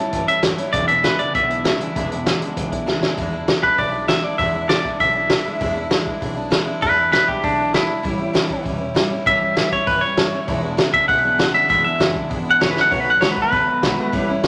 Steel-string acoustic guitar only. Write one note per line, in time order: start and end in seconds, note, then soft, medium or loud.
0.00 0.12 G3 soft
0.00 0.12 C#4 medium
0.00 0.12 E4 medium
0.12 0.28 E3 medium
0.12 0.28 G3 medium
0.12 0.27 C#4 medium
0.12 0.26 E4 medium
0.27 0.42 G3 soft
0.27 0.42 C#4 soft
0.27 0.42 E4 medium
0.42 0.58 A2 medium
0.42 0.58 E3 medium
0.42 0.59 G3 medium
0.42 0.57 C#4 medium
0.42 0.56 E4 medium
0.57 0.73 G3 medium
0.57 0.74 C#4 medium
0.57 0.73 E4 medium
0.72 0.89 E2 medium
0.72 0.89 B2 medium
0.72 0.89 E3 medium
0.72 0.89 G#3 medium
0.72 0.88 D4 medium
0.72 0.87 E4 medium
0.88 1.03 E3 soft
0.88 1.04 G#3 soft
0.88 1.04 D4 medium
0.88 1.04 E4 medium
1.04 1.19 E2 medium
1.04 1.19 B2 medium
1.04 1.20 E3 medium
1.04 1.19 G#3 medium
1.04 1.18 D4 medium
1.04 1.17 E4 medium
1.18 1.33 E3 soft
1.18 1.34 G#3 soft
1.18 1.35 D4 soft
1.18 1.34 E4 medium
1.34 1.50 E3 medium
1.34 1.50 G#3 medium
1.34 1.50 D4 medium
1.34 1.48 E4 medium
1.49 1.64 E3 soft
1.49 1.64 G#3 medium
1.49 1.64 D4 medium
1.49 1.65 E4 medium
1.64 1.80 E2 medium
1.64 1.80 B2 medium
1.64 1.80 E3 medium
1.64 1.80 G#3 medium
1.64 1.79 D4 medium
1.64 1.78 E4 loud
1.79 1.95 E3 medium
1.79 1.95 G#3 medium
1.79 1.96 D4 medium
1.79 1.95 E4 medium
1.95 2.11 E2 medium
1.95 2.11 B2 medium
1.95 2.11 E3 loud
1.95 2.11 G#3 loud
1.95 2.11 D4 medium
1.95 2.10 E4 loud
2.11 2.25 E3 soft
2.11 2.26 G#3 medium
2.11 2.26 D4 medium
2.11 2.26 E4 medium
2.26 2.41 E2 medium
2.26 2.41 B2 medium
2.26 2.42 E3 medium
2.26 2.41 G#3 medium
2.26 2.40 D4 medium
2.26 2.39 E4 loud
2.41 2.55 E3 medium
2.41 2.56 G#3 medium
2.41 2.57 D4 medium
2.41 2.56 E4 medium
2.56 2.72 E3 medium
2.56 2.72 G#3 medium
2.56 2.71 D4 medium
2.56 2.70 E4 medium
2.71 2.86 E3 medium
2.71 2.86 G#3 medium
2.71 2.87 D4 medium
2.71 2.87 E4 medium
2.86 3.02 E2 medium
2.86 3.02 B2 loud
2.86 3.02 E3 medium
2.86 3.02 G#3 loud
2.86 3.01 D4 medium
2.86 3.00 E4 medium
3.02 3.16 E3 medium
3.02 3.17 G#3 medium
3.02 3.17 D4 medium
3.02 3.17 E4 medium
3.17 3.32 E2 medium
3.17 3.33 B2 medium
3.17 3.33 E3 loud
3.17 3.32 G#3 loud
3.17 3.32 D4 loud
3.17 3.31 E4 loud
3.32 3.47 E3 medium
3.32 3.48 G#3 medium
3.32 3.48 D4 medium
3.32 3.47 E4 medium
3.48 3.63 E2 medium
3.48 3.63 B2 medium
3.48 3.63 E3 medium
3.48 3.62 G#3 medium
3.48 3.62 D4 loud
3.48 3.61 E4 loud
3.62 3.76 E3 soft
3.62 3.77 G#3 medium
3.62 3.77 D4 soft
3.62 3.78 E4 medium
3.77 3.93 E3 medium
3.77 3.92 G#3 medium
3.77 3.92 D4 medium
3.77 3.91 E4 medium
3.92 4.07 E3 soft
3.92 4.07 G#3 medium
3.92 4.08 D4 medium
3.92 4.08 E4 medium
4.07 4.23 E2 medium
4.07 4.24 B2 medium
4.07 4.24 E3 medium
4.07 4.24 G#3 medium
4.07 4.23 D4 loud
4.07 4.22 E4 medium
4.23 4.39 E3 medium
4.23 4.39 G#3 medium
4.23 4.39 D4 medium
4.23 4.39 E4 medium
4.39 4.54 E2 medium
4.39 4.54 B2 medium
4.39 4.55 E3 medium
4.39 4.55 G#3 medium
4.39 4.54 D4 medium
4.39 4.53 E4 medium
4.54 4.69 E3 medium
4.54 4.69 G#3 medium
4.54 4.70 D4 medium
4.54 4.69 E4 medium
4.69 4.85 E2 medium
4.69 4.85 B2 medium
4.69 4.85 E3 medium
4.69 4.85 G#3 medium
4.69 4.84 D4 medium
4.69 4.83 E4 medium
4.84 4.99 E3 soft
4.84 5.00 G#3 medium
4.84 5.00 D4 medium
4.84 5.00 E4 medium
5.00 5.15 E3 medium
5.00 5.15 G#3 medium
5.00 5.14 D4 medium
5.00 5.13 E4 medium
5.15 5.30 E3 soft
5.15 5.30 G#3 medium
5.15 5.30 D4 medium
5.15 5.30 E4 medium
5.30 5.45 E2 medium
5.30 5.46 B2 medium
5.30 5.46 E3 medium
5.30 5.46 G#3 medium
5.30 5.45 D4 medium
5.30 5.44 E4 loud
5.45 5.59 E3 medium
5.45 5.60 G#3 medium
5.45 5.60 D4 medium
5.45 5.61 E4 medium
5.60 5.76 E2 medium
5.60 5.76 B2 medium
5.60 5.76 E3 loud
5.60 5.76 G#3 loud
5.60 5.75 D4 medium
5.60 5.75 E4 loud
5.76 5.90 E3 medium
5.76 5.90 G#3 medium
5.76 5.91 D4 medium
5.76 5.91 E4 medium
5.90 6.06 E2 medium
5.90 6.06 B2 loud
5.90 6.06 E3 medium
5.90 6.06 G#3 loud
5.90 6.05 D4 loud
5.90 6.04 E4 medium
6.05 6.19 E3 medium
6.05 6.20 G#3 medium
6.05 6.21 D4 medium
6.05 6.21 E4 medium
6.20 6.36 E3 medium
6.20 6.36 G#3 medium
6.20 6.36 D4 medium
6.20 6.34 E4 medium
6.36 6.50 E3 medium
6.36 6.50 G#3 medium
6.36 6.50 D4 medium
6.36 6.51 E4 medium
6.50 6.66 E2 medium
6.50 6.67 B2 medium
6.50 6.67 E3 medium
6.50 6.66 G#3 loud
6.50 6.65 D4 loud
6.50 6.64 E4 loud
6.66 6.81 E3 medium
6.66 6.81 G#3 medium
6.66 6.81 D4 medium
6.66 6.82 E4 medium
6.81 6.97 E2 medium
6.81 6.97 B2 medium
6.81 6.97 E3 medium
6.81 6.97 G#3 medium
6.81 6.96 D4 medium
6.81 6.95 E4 medium
6.97 7.11 E3 soft
6.97 7.11 G#3 medium
6.97 7.11 D4 medium
6.97 7.12 E4 medium
7.11 7.27 E2 medium
7.11 7.28 B2 medium
7.11 7.28 E3 medium
7.11 7.27 G#3 medium
7.11 7.27 D4 medium
7.11 7.26 E4 medium
7.27 7.41 E3 soft
7.27 7.42 G#3 medium
7.27 7.43 D4 soft
7.27 7.43 E4 medium
7.42 7.58 E3 medium
7.42 7.58 G#3 medium
7.42 7.57 D4 medium
7.42 7.57 E4 medium
7.58 7.73 E3 soft
7.58 7.74 G#3 soft
7.58 7.74 D4 soft
7.58 7.73 E4 medium
7.74 7.89 E2 medium
7.74 7.89 B2 medium
7.74 7.89 E3 medium
7.74 7.88 G#3 medium
7.74 7.87 D4 medium
7.74 7.87 E4 medium
7.88 8.02 E3 medium
7.88 8.04 G#3 medium
7.88 8.04 D4 medium
7.88 8.04 E4 medium
8.03 8.19 A2 medium
8.03 8.19 E3 medium
8.03 8.19 G3 medium
8.03 8.18 C#4 medium
8.03 8.17 E4 medium
8.18 8.33 G3 soft
8.18 8.33 C#4 medium
8.18 8.34 E4 medium
8.33 8.49 A2 medium
8.33 8.50 E3 medium
8.33 8.50 G3 loud
8.33 8.49 C#4 medium
8.33 8.47 E4 medium
8.48 8.63 G3 soft
8.48 8.64 C#4 medium
8.48 8.64 E4 medium
8.63 8.79 E3 medium
8.63 8.80 G3 medium
8.63 8.79 C#4 medium
8.63 8.77 E4 medium
8.78 8.94 G3 soft
8.78 8.95 C#4 medium
8.78 8.95 E4 medium
8.94 9.10 A2 medium
8.94 9.11 E3 medium
8.94 9.11 G3 loud
8.94 9.09 C#4 loud
8.94 9.08 E4 loud
9.09 9.25 G3 medium
9.09 9.26 C#4 medium
9.09 9.25 E4 medium
9.25 9.41 A2 medium
9.25 9.41 E3 medium
9.25 9.42 G3 medium
9.25 9.41 C#4 loud
9.25 9.39 E4 medium
9.40 9.56 G3 soft
9.40 9.56 C#4 soft
9.40 9.56 E4 medium
9.55 9.71 A2 medium
9.55 9.72 E3 medium
9.55 9.72 G3 medium
9.55 9.72 C#4 medium
9.55 9.70 E4 medium
9.71 9.87 G3 soft
9.71 9.88 C#4 medium
9.71 9.87 E4 medium
9.87 10.02 E3 medium
9.87 10.03 G3 medium
9.87 10.03 C#4 medium
9.87 10.01 E4 medium
10.03 10.17 G3 medium
10.03 10.18 C#4 soft
10.03 10.18 E4 medium
10.17 10.33 A2 medium
10.17 10.33 E3 medium
10.17 10.33 G3 medium
10.17 10.32 C#4 medium
10.17 10.31 E4 medium
10.32 10.49 G3 soft
10.32 10.48 C#4 medium
10.32 10.48 E4 medium
10.48 10.63 E2 loud
10.48 10.63 B2 loud
10.48 10.64 E3 loud
10.48 10.63 G#3 loud
10.48 10.62 D4 medium
10.48 10.61 E4 loud
10.62 10.77 E3 medium
10.62 10.77 G#3 medium
10.62 10.77 D4 medium
10.62 10.78 E4 medium
10.77 10.93 E2 medium
10.77 10.93 B2 medium
10.77 10.93 E3 medium
10.77 10.93 G#3 loud
10.77 10.92 D4 medium
10.77 10.90 E4 loud
10.92 11.06 E3 soft
10.92 11.08 G#3 soft
10.92 11.08 D4 medium
10.92 11.08 E4 medium
11.07 11.23 E3 medium
11.07 11.24 G#3 medium
11.07 11.23 D4 medium
11.07 11.22 E4 medium
11.23 11.38 E3 soft
11.23 11.38 G#3 medium
11.23 11.38 D4 soft
11.23 11.39 E4 medium
11.38 11.54 E2 medium
11.38 11.54 B2 medium
11.38 11.54 E3 medium
11.38 11.54 G#3 medium
11.38 11.53 D4 medium
11.38 11.52 E4 loud
11.53 11.68 E3 medium
11.53 11.68 G#3 medium
11.53 11.69 D4 medium
11.53 11.69 E4 medium
11.68 11.84 E2 medium
11.68 11.84 B2 medium
11.68 11.84 E3 medium
11.68 11.84 G#3 loud
11.68 11.84 D4 medium
11.68 11.83 E4 loud
11.84 11.98 E3 medium
11.84 11.99 G#3 medium
11.84 11.99 D4 medium
11.84 11.99 E4 medium
11.99 12.15 E2 medium
11.99 12.15 B2 medium
11.99 12.15 E3 medium
11.99 12.14 G#3 medium
11.99 12.14 D4 medium
11.99 12.12 E4 medium
12.13 12.27 E3 soft
12.13 12.29 G#3 medium
12.13 12.30 D4 medium
12.13 12.30 E4 medium
12.29 12.45 E3 medium
12.29 12.45 G#3 medium
12.29 12.44 D4 medium
12.29 12.43 E4 medium
12.44 12.59 E3 soft
12.44 12.60 G#3 medium
12.44 12.60 D4 medium
12.44 12.60 E4 medium
12.60 12.76 E2 medium
12.60 12.76 B2 medium
12.60 12.76 E3 medium
12.60 12.75 G#3 medium
12.60 12.74 D4 medium
12.60 12.73 E4 medium
12.74 12.90 E3 medium
12.74 12.90 G#3 medium
12.74 12.91 D4 medium
12.74 12.90 E4 medium
12.90 13.06 B2 medium
12.90 13.06 D#3 medium
12.90 13.06 A3 loud
12.90 13.06 B3 medium
12.90 13.04 F#4 medium
13.05 13.20 A3 soft
13.05 13.20 B3 medium
13.05 13.21 F#4 medium
13.20 13.36 B2 medium
13.20 13.37 D#3 medium
13.20 13.36 A3 medium
13.20 13.35 B3 medium
13.20 13.34 F#4 medium
13.35 13.51 A3 soft
13.35 13.52 B3 medium
13.35 13.51 F#4 medium
13.51 13.67 D#3 medium
13.51 13.67 A3 medium
13.51 13.67 B3 medium
13.51 13.66 F#4 medium
13.67 13.82 A3 soft
13.67 13.82 B3 medium
13.67 13.82 F#4 medium
13.82 13.98 B2 medium
13.82 13.98 D#3 medium
13.82 13.98 A3 loud
13.82 13.98 B3 loud
13.82 13.96 F#4 loud
13.97 14.13 A3 medium
13.97 14.13 B3 medium
13.97 14.13 F#4 medium
14.12 14.28 A2 loud
14.12 14.28 E3 loud
14.12 14.28 G3 loud
14.12 14.29 C#4 loud
14.12 14.27 E4 loud
14.29 14.44 G3 medium
14.29 14.44 C#4 medium
14.29 14.44 E4 medium
14.44 14.47 A2 medium